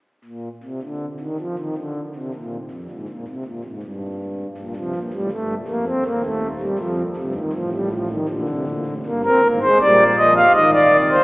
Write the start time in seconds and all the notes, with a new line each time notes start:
0.24 A#2
0.63 C3
0.82 D3
1.20 D#3
1.39 F3
1.58 D#3
1.77 D3
2.15 C3
2.34 A#2
2.71 F2
2.90 G#2
3.08 A#2
3.27 C3
3.45 A#2
3.64 G#2
3.83 G2
4.57 A#1 A#2
4.76 C2 C3 F3
4.95 A#1 A#2
5.13 A1 A2 G3
5.31 G1 G2 A3
5.68 F1 F2 A#3
5.87 C4
6.05 D#1 D#2 A#3
6.24 A3
6.60 G3
6.79 F1 F2 F3
7.16 G1 G2 C3
7.35 D#3
7.53 A1 A2 F3
7.72 G3
7.91 F3
8.10 D#3
8.28 A#1 A#2 D3
8.48 C2 C3
8.67 A#1 A#2
8.86 A1 A2
9.06 G1 G2 A#3
9.25 C4 A#4
9.43 G#1 G#2 A#3
9.62 G#3 C5
9.80 A#1 A#2 G3 D5
10.18 F3 D#5
10.37 F5
10.55 G#1 G#2 D#3 D#5
10.73 D5
10.92 C2 C3
11.11 C5